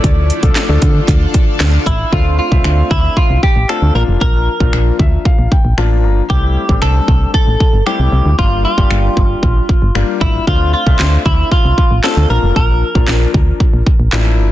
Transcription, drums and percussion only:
0.04 kick, closed hi-hat
0.30 closed hi-hat
0.43 kick, closed hi-hat
0.56 snare, clap, closed hi-hat
0.82 kick, closed hi-hat
1.08 kick, clap, closed hi-hat
1.34 kick, closed hi-hat
1.60 snare, clap, closed hi-hat
1.86 kick, closed hi-hat
2.13 kick
2.52 kick
2.64 finger snap
2.91 kick
3.17 kick
3.43 kick
3.69 finger snap
4.21 kick
4.60 kick
4.73 finger snap
4.99 kick
5.25 kick
5.52 kick
5.78 finger snap
6.30 kick
6.69 kick
6.82 finger snap
7.08 kick
7.34 kick
7.60 kick
7.87 finger snap
8.39 kick
8.78 kick
8.91 finger snap
9.17 kick
9.43 kick
9.69 kick
9.95 finger snap
10.21 kick
10.47 kick
10.87 kick
10.99 snare, clap
11.26 kick
11.52 kick
11.78 kick
12.04 snare, clap
12.56 kick
12.95 kick
13.08 snare, clap
13.34 kick
13.60 kick
13.87 kick
14.12 snare, clap

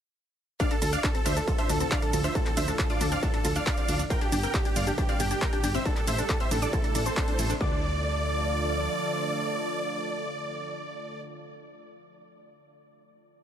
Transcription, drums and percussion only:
0.60 kick, closed hi-hat, shaker
0.71 closed hi-hat
0.82 open hi-hat, ride, shaker
0.93 closed hi-hat, shaker
1.04 kick, clap, closed hi-hat, shaker
1.15 closed hi-hat
1.26 open hi-hat, ride, shaker
1.37 closed hi-hat, shaker
1.48 kick, closed hi-hat, shaker
1.59 closed hi-hat
1.70 open hi-hat, ride, shaker
1.80 closed hi-hat, shaker
1.91 kick, clap, closed hi-hat, shaker
2.02 closed hi-hat
2.13 open hi-hat, ride, shaker
2.24 closed hi-hat, shaker
2.35 kick, closed hi-hat, shaker
2.46 clap, closed hi-hat
2.57 open hi-hat, ride, shaker
2.68 closed hi-hat, shaker
2.79 kick, clap, closed hi-hat, shaker
2.90 closed hi-hat
3.01 open hi-hat, ride, shaker
3.12 closed hi-hat, shaker
3.23 kick, closed hi-hat, shaker
3.34 closed hi-hat
3.45 open hi-hat, ride, shaker
3.56 closed hi-hat, shaker
3.66 kick, clap, closed hi-hat, shaker
3.78 closed hi-hat
3.88 open hi-hat, ride, shaker
3.99 closed hi-hat, shaker
4.10 kick, closed hi-hat, shaker
4.21 closed hi-hat
4.32 open hi-hat, ride, shaker
4.43 closed hi-hat, shaker
4.54 kick, clap, closed hi-hat, shaker
4.65 closed hi-hat
4.76 open hi-hat, ride, shaker
4.87 closed hi-hat, shaker
4.98 kick, closed hi-hat, shaker
5.09 closed hi-hat
5.20 open hi-hat, ride, shaker
5.31 closed hi-hat, shaker
5.42 kick, clap, closed hi-hat, shaker
5.53 closed hi-hat
5.64 open hi-hat, ride, shaker
5.75 closed hi-hat, shaker
5.85 kick, closed hi-hat, shaker
5.96 clap, closed hi-hat
6.07 open hi-hat, ride, shaker
6.18 closed hi-hat, shaker
6.29 kick, clap, closed hi-hat, shaker
6.40 closed hi-hat
6.51 open hi-hat, ride, shaker
6.62 closed hi-hat, shaker
6.73 kick, closed hi-hat, shaker
6.84 closed hi-hat
6.95 open hi-hat, ride, shaker
7.06 closed hi-hat, shaker
7.17 kick, clap, closed hi-hat, shaker
7.28 closed hi-hat
7.39 open hi-hat, ride, shaker
7.50 closed hi-hat, shaker
7.61 kick

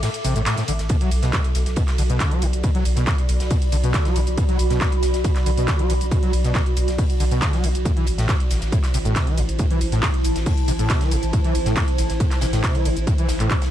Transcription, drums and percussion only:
0.03 snare, closed hi-hat, ride, shaker
0.14 closed hi-hat, shaker
0.25 open hi-hat, ride, shaker
0.36 closed hi-hat, shaker
0.46 snare, clap, closed hi-hat, ride, shaker
0.57 snare, closed hi-hat, shaker
0.68 open hi-hat, ride, shaker
0.79 snare, closed hi-hat, shaker
0.89 kick, closed hi-hat, ride, shaker
1.01 closed hi-hat
1.11 open hi-hat, ride, shaker
1.22 snare, closed hi-hat, shaker
1.33 kick, snare, clap, closed hi-hat, ride, shaker
1.44 closed hi-hat
1.54 snare, open hi-hat, ride, shaker
1.66 snare, closed hi-hat, shaker
1.76 kick, closed hi-hat, ride, shaker
1.88 snare, clap, closed hi-hat, shaker
1.98 open hi-hat, ride, shaker
2.10 closed hi-hat, shaker
2.20 kick, snare, clap, closed hi-hat, ride, shaker
2.31 closed hi-hat, ride
2.42 open hi-hat, ride, shaker
2.53 closed hi-hat, shaker
2.63 kick, closed hi-hat, ride, shaker
2.75 closed hi-hat
2.85 open hi-hat, ride, shaker
2.96 snare, closed hi-hat, shaker
3.07 kick, snare, clap, closed hi-hat, ride, shaker
3.18 closed hi-hat
3.29 open hi-hat, ride, shaker
3.40 snare, closed hi-hat, shaker
3.50 kick, closed hi-hat, open hi-hat, ride, shaker
3.62 closed hi-hat, shaker
3.72 open hi-hat, ride, shaker
3.84 closed hi-hat, shaker
3.94 kick, snare, clap, closed hi-hat, ride, shaker
4.05 snare, closed hi-hat
4.16 open hi-hat, ride, shaker
4.27 closed hi-hat, shaker
4.38 kick, closed hi-hat, ride, shaker
4.49 closed hi-hat
4.59 open hi-hat, ride, shaker
4.70 snare, closed hi-hat, shaker
4.81 kick, snare, clap, closed hi-hat, ride, shaker
4.92 closed hi-hat
5.03 snare, open hi-hat, ride, shaker
5.14 snare, closed hi-hat, shaker
5.24 kick, closed hi-hat, ride, shaker
5.36 snare, clap, closed hi-hat, shaker
5.46 open hi-hat, ride, shaker
5.58 closed hi-hat, shaker
5.68 kick, snare, clap, closed hi-hat, ride, shaker
5.79 closed hi-hat, ride
5.90 open hi-hat, ride, shaker
6.01 closed hi-hat, shaker
6.11 kick, closed hi-hat, ride, shaker
6.23 closed hi-hat
6.33 open hi-hat, ride, shaker
6.44 snare, closed hi-hat, shaker
6.54 kick, snare, clap, closed hi-hat, ride, shaker
6.66 closed hi-hat
6.77 open hi-hat, ride, shaker
6.88 snare, closed hi-hat, shaker
6.98 kick, closed hi-hat, open hi-hat, ride, shaker
7.10 closed hi-hat, shaker
7.20 open hi-hat, ride, shaker
7.31 closed hi-hat, shaker
7.42 kick, snare, clap, closed hi-hat, ride, shaker
7.53 snare, closed hi-hat
7.64 open hi-hat, ride, shaker
7.75 closed hi-hat, shaker
7.85 kick, closed hi-hat, ride, shaker
7.97 closed hi-hat
8.06 open hi-hat, ride, shaker
8.18 snare, closed hi-hat, shaker
8.29 kick, snare, clap, closed hi-hat, ride, shaker
8.40 closed hi-hat
8.50 snare, open hi-hat, ride, shaker
8.61 snare, closed hi-hat, shaker
8.72 kick, closed hi-hat, ride, shaker
8.84 snare, clap, closed hi-hat, shaker
8.94 open hi-hat, ride, shaker
9.05 closed hi-hat, shaker
9.16 kick, snare, clap, closed hi-hat, ride, shaker
9.27 closed hi-hat, ride
9.38 open hi-hat, ride, shaker
9.49 closed hi-hat, shaker
9.59 kick, closed hi-hat, ride, shaker
9.71 closed hi-hat
9.81 open hi-hat, ride, shaker
9.92 snare, closed hi-hat, shaker
10.03 kick, snare, clap, closed hi-hat, ride, shaker
10.14 closed hi-hat
10.24 open hi-hat, ride, shaker
10.36 snare, closed hi-hat, shaker
10.46 kick, closed hi-hat, open hi-hat, ride, shaker
10.57 closed hi-hat, shaker
10.68 open hi-hat, ride, shaker
10.79 closed hi-hat, shaker
10.90 kick, snare, clap, closed hi-hat, ride, shaker
11.01 snare, closed hi-hat
11.11 open hi-hat, ride, shaker
11.23 closed hi-hat, shaker
11.33 kick, closed hi-hat, ride, shaker
11.44 closed hi-hat
11.55 open hi-hat, ride, shaker
11.66 snare, closed hi-hat, shaker
11.76 kick, snare, clap, closed hi-hat, ride, shaker
11.88 closed hi-hat
11.98 snare, open hi-hat, ride, shaker
12.10 snare, closed hi-hat, shaker
12.20 kick, closed hi-hat, ride, shaker
12.31 snare, clap, closed hi-hat, shaker
12.41 snare, open hi-hat, ride, shaker
12.53 snare, closed hi-hat, ride, shaker
12.64 kick, snare, clap, closed hi-hat, ride, shaker
12.75 closed hi-hat, ride
12.85 open hi-hat, ride, shaker
12.97 closed hi-hat, shaker
13.07 kick, closed hi-hat, ride, shaker
13.18 closed hi-hat, shaker
13.29 snare, open hi-hat, ride, shaker
13.40 clap, closed hi-hat, ride, shaker
13.50 kick, clap, closed hi-hat, ride, shaker
13.62 snare, closed hi-hat, ride, shaker

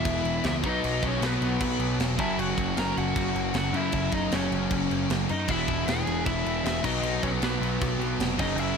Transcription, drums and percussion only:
0.05 kick, crash
0.25 crash
0.44 snare, crash
0.64 kick, crash
0.84 crash
1.03 kick, crash
1.22 snare, crash
1.42 crash
1.61 kick, crash
1.80 crash
2.00 snare, crash
2.19 kick, crash
2.39 crash
2.58 kick, crash
2.77 snare, crash
2.97 crash
3.16 kick, crash
3.36 crash
3.54 snare, crash
3.74 crash
3.92 kick, crash
4.12 kick, crash
4.32 snare, crash
4.52 crash
4.71 kick, crash
4.91 crash
5.10 snare, crash
5.29 crash
5.48 kick, crash
5.68 kick, crash
5.88 snare, crash
6.07 crash
6.26 kick, crash
6.46 crash
6.66 snare, crash
6.84 kick, crash
7.03 crash
7.23 kick, crash
7.42 snare, crash
7.63 crash
7.82 kick, crash
8.01 crash
8.20 snare, crash
8.39 kick, crash
8.58 crash

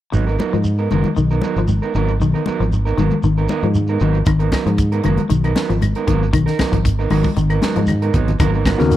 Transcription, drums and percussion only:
0.13 high conga, shekere
0.28 shekere
0.39 high conga, shekere
0.53 shekere
0.64 high conga, shekere
0.78 shekere
0.91 high conga, shekere
1.04 high conga, shekere
1.17 high conga, shekere
1.31 shekere
1.41 high conga, shekere
1.57 shekere
1.68 high conga, shekere
1.83 shekere
1.95 shekere
2.08 shekere
2.20 high conga, shekere
2.35 shekere
2.46 high conga, shekere
2.61 shekere
2.71 high conga, shekere
2.87 shekere
2.98 high conga, shekere
3.11 high conga, shekere
3.23 high conga, shekere
3.38 shekere
3.48 high conga, shekere
3.62 shekere
3.75 high conga, shekere
3.88 shekere
4.00 shekere
4.14 shekere
4.26 kick, closed hi-hat, high conga, claves, shekere
4.40 closed hi-hat, shekere
4.52 kick, snare, closed hi-hat, high conga, claves, shekere
4.66 closed hi-hat, shekere
4.78 kick, closed hi-hat, high conga, shekere
4.92 closed hi-hat, shekere
5.04 closed hi-hat, high conga, claves, shekere
5.17 closed hi-hat, high conga, shekere
5.30 closed hi-hat, high conga, shekere
5.44 closed hi-hat, claves, shekere
5.56 snare, closed hi-hat, high conga, shekere
5.70 closed hi-hat, shekere
5.82 closed hi-hat, high conga, claves, shekere
5.95 closed hi-hat, shekere
6.08 kick, closed hi-hat, shekere
6.23 shekere
6.33 kick, closed hi-hat, high conga, claves, shekere
6.48 snare, closed hi-hat, shekere
6.59 kick, snare, closed hi-hat, high conga, claves, shekere
6.73 kick, closed hi-hat, shekere
6.85 kick, closed hi-hat, high conga, shekere
7.00 shekere
7.10 open hi-hat, high conga, claves, shekere
7.24 kick, high conga, shekere
7.37 closed hi-hat, high conga, shekere
7.50 closed hi-hat, claves, shekere
7.62 snare, closed hi-hat, high conga, shekere
7.76 closed hi-hat, high conga, shekere
7.87 closed hi-hat, low conga, claves, shekere
8.02 closed hi-hat, shekere
8.14 kick, closed hi-hat, low conga, shekere
8.28 closed hi-hat, low conga, shekere
8.40 kick, closed hi-hat, high conga, low conga, claves, shekere
8.54 shekere
8.65 kick, snare, closed hi-hat, high conga, claves, shekere
8.79 snare, closed hi-hat, shekere
8.91 closed hi-hat, high conga, shekere

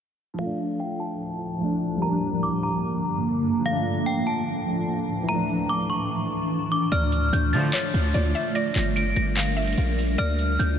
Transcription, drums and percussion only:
6.92 closed hi-hat
7.12 closed hi-hat
7.33 closed hi-hat
7.53 open hi-hat
7.73 clap, closed hi-hat
7.95 closed hi-hat
8.14 closed hi-hat
8.35 closed hi-hat
8.55 closed hi-hat
8.76 clap, closed hi-hat
8.97 closed hi-hat
9.16 closed hi-hat
9.36 clap, closed hi-hat
9.57 closed hi-hat
9.62 closed hi-hat
9.68 closed hi-hat
9.73 closed hi-hat
9.78 closed hi-hat
9.99 open hi-hat
10.19 closed hi-hat
10.39 closed hi-hat
10.60 closed hi-hat

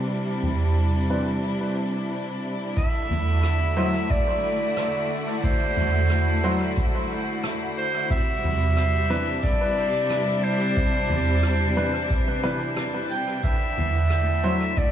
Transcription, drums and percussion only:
0.43 mid tom
2.77 kick, shaker
3.10 mid tom
3.43 cross-stick, shaker
4.10 kick, shaker
4.77 cross-stick, shaker
5.44 kick, shaker
5.77 mid tom
6.10 cross-stick, shaker
6.77 kick, shaker
7.44 cross-stick, shaker
8.10 kick, shaker
8.44 mid tom
8.77 cross-stick, shaker
9.43 kick, shaker
10.10 cross-stick, shaker
10.77 kick, shaker
11.10 mid tom
11.43 cross-stick, shaker
12.10 kick, shaker
12.77 cross-stick, shaker
13.10 shaker
13.43 kick, shaker
13.78 mid tom
14.10 cross-stick, shaker
14.77 kick, shaker

